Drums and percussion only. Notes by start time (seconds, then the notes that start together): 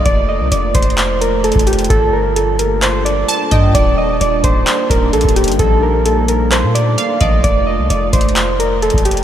0.06 kick, closed hi-hat
0.52 closed hi-hat
0.75 kick, closed hi-hat, open hi-hat
0.82 closed hi-hat
0.90 closed hi-hat
0.98 clap, closed hi-hat
1.22 closed hi-hat
1.44 closed hi-hat
1.52 kick, closed hi-hat
1.59 closed hi-hat
1.67 closed hi-hat, open hi-hat
1.73 closed hi-hat
1.79 closed hi-hat
1.84 closed hi-hat
1.90 kick, closed hi-hat
2.36 closed hi-hat
2.59 closed hi-hat
2.82 clap, closed hi-hat
3.06 closed hi-hat
3.29 closed hi-hat
3.51 kick, closed hi-hat
3.75 kick, closed hi-hat
4.21 closed hi-hat
4.44 kick, closed hi-hat
4.67 clap, closed hi-hat
4.90 kick, closed hi-hat
5.13 closed hi-hat
5.21 kick, closed hi-hat
5.29 closed hi-hat
5.36 closed hi-hat
5.44 closed hi-hat
5.48 closed hi-hat
5.52 closed hi-hat
5.59 kick, closed hi-hat
6.06 closed hi-hat
6.28 closed hi-hat
6.52 clap, closed hi-hat
6.75 closed hi-hat
6.98 closed hi-hat
7.21 kick, closed hi-hat
7.44 kick, closed hi-hat
7.90 closed hi-hat
8.13 kick, closed hi-hat, open hi-hat
8.21 closed hi-hat
8.29 closed hi-hat
8.36 clap, closed hi-hat
8.60 closed hi-hat
8.82 closed hi-hat
8.90 kick, closed hi-hat
8.98 closed hi-hat
9.05 closed hi-hat, open hi-hat
9.11 closed hi-hat
9.17 closed hi-hat